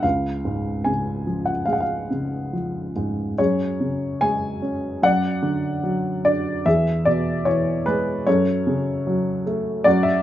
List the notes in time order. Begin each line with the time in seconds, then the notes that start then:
0.03 C#2 F5
0.45 G#2
0.84 C#3 G#5
1.27 F3
1.46 F#5
1.65 G#3 F5
1.73 F#5
1.80 F5
2.10 C#3
2.53 F3
2.96 G#2
3.38 F#2 G#4 C#5
3.80 C#3
4.21 G#3 G#5
4.62 C#4
5.02 F#2 D5 F#5
5.42 D3
5.83 F#3
6.24 D4 D5
6.66 E2 G#4 E5
7.05 B2 D5
7.45 E3 C#5
7.86 G#3 B4
8.27 F#2 A4 C#5
8.67 C#3
9.07 F#3
9.47 A3
9.84 F#2 F#4 D5
10.03 E5